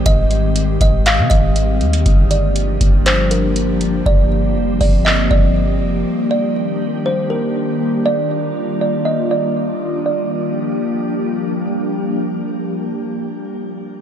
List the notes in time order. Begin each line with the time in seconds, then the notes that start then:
Already playing: D#3 G3 G#3 C4 G4
0.06 G#1 D#5, kick, closed hi-hat
0.31 closed hi-hat
0.56 closed hi-hat
0.81 G#1 D#5, kick, closed hi-hat
1.06 F5, clap, closed hi-hat
1.18 C3
1.30 G#1 D#5, kick, closed hi-hat
1.56 closed hi-hat
1.81 D#2, closed hi-hat
1.93 closed hi-hat
2.06 G1 F3 G3 A#3 D4 G4, kick, closed hi-hat
2.31 D5, closed hi-hat
2.56 closed hi-hat
2.81 G1, kick, closed hi-hat
3.06 C5, clap, closed hi-hat
3.31 A#4, closed hi-hat
3.56 closed hi-hat
3.81 closed hi-hat
4.06 G1 C4 D5, kick
4.56 F1
4.81 G1 D5, kick, open hi-hat
5.05 D#5, clap
5.31 G1 D5, kick
5.81 F1
6.06 D#3 D4 G4
6.31 D5
7.06 C5
7.30 A#4
8.06 F4 D5
8.81 D5
9.05 D#5
9.31 D5
10.06 F3 G3 A#3 D4 G4 D5